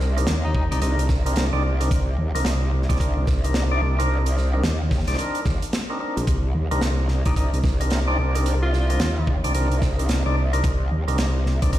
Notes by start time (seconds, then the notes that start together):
Already playing: C2
0.00 snare
0.17 C4 D4 D#4 A#4, closed hi-hat
0.27 D#2, snare, closed hi-hat
0.44 D#4
0.55 D#4, kick
0.71 C2 C4 D4 D#4 D5, closed hi-hat
0.82 C2 C4 D4 D#4 A#4, closed hi-hat
0.99 closed hi-hat
1.09 kick, snare
1.26 C4 D4 D#4 A#4, closed hi-hat
1.36 C2, snare, closed hi-hat
1.53 C2 C4 D4 D#4 D5
1.80 C4 D4 D#4 A#4, closed hi-hat
1.91 C2, kick, closed hi-hat
2.18 D#2
2.35 C2 C4 D4 D#4 A#4, closed hi-hat
2.45 snare, closed hi-hat
2.82 snare
2.89 C2 C4 D4 D#4 D5, kick, snare, closed hi-hat
2.96 C4 D4 D#4 A#4, snare
3.00 kick, closed hi-hat
3.17 C2
3.27 C2, kick, snare
3.44 C4 D4 D#4 A#4, closed hi-hat
3.54 snare, closed hi-hat
3.71 C4 D4 D#4 D5
3.82 C2
3.99 C4 D4 D#4 A#4, closed hi-hat
4.26 closed hi-hat
4.37 snare
4.53 C4 D4 D#4 A#4
4.64 D#2, snare, closed hi-hat
4.91 kick, snare
4.95 snare
4.99 snare
5.04 snare, closed hi-hat
5.08 C2 C4 D4 D#4 D5, snare
5.10 snare
5.13 snare
5.16 C4 D4 D#4 A#4, snare, closed hi-hat
5.35 closed hi-hat
5.45 D#2, kick, snare
5.62 closed hi-hat
5.73 snare, closed hi-hat
5.90 C4 D4 D#4 A#4
6.00 C4 D4 D#4 A#4
6.17 A#1, closed hi-hat
6.27 C2, kick, closed hi-hat
6.54 D#2
6.71 C2 C4 D4 D#4 A#4, closed hi-hat
6.81 snare, closed hi-hat
7.08 snare
7.25 C2 C4 D4 D#4 D5, kick, closed hi-hat
7.36 C4 D4 D#4 A#4, kick, closed hi-hat
7.53 C2, closed hi-hat
7.64 C2, kick, snare
7.80 C4 D4 D#4 A#4, closed hi-hat
7.90 snare, closed hi-hat
8.08 C4 D4 D#4 D5
8.18 C2
8.35 C4 D4 D#4 A#4, closed hi-hat
8.46 closed hi-hat
8.62 F4
8.73 snare
8.90 C4 D4 D#4 A#4, closed hi-hat
9.00 D#2, snare, closed hi-hat
9.27 kick
9.44 C2 C4 D4 D#4 D5, closed hi-hat
9.55 C2 C4 D4 D#4 A#4, closed hi-hat
9.71 closed hi-hat
9.82 kick, snare
9.99 C4 D4 D#4 A#4, closed hi-hat
10.09 C2, snare, closed hi-hat
10.26 C2 C4 D4 D#4 D5
10.53 C4 D4 D#4 A#4, closed hi-hat
10.64 C2, kick, closed hi-hat
10.91 D#2
11.08 C2 C4 D4 D#4 A#4, closed hi-hat
11.18 snare, closed hi-hat
11.46 snare
11.62 C2 C4 D4 D#4 D5, kick, closed hi-hat
11.73 C4 D4 D#4 A#4, kick, closed hi-hat